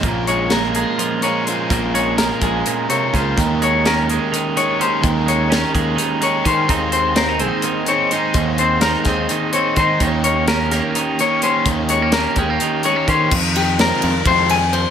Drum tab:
CC |-------|-------|-------|-------|
RD |-------|-------|-------|-------|
HH |xxxxxxx|xxxxxxx|xxxxxxx|xxxxxxx|
SD |--o----|--o----|--o----|--o----|
BD |o------|o--o--o|o------|o--o--o|

CC |-------|-------|-------|-------|
RD |-------|-------|-------|-------|
HH |xxxxxxx|xxxxxxx|xxxxxxx|xxxxxxx|
SD |--o----|--oo---|--oo---|--o----|
BD |o------|o--o--o|o------|o--o--o|

CC |x------|
RD |-xxxxxx|
HH |-------|
SD |--o----|
BD |o---o--|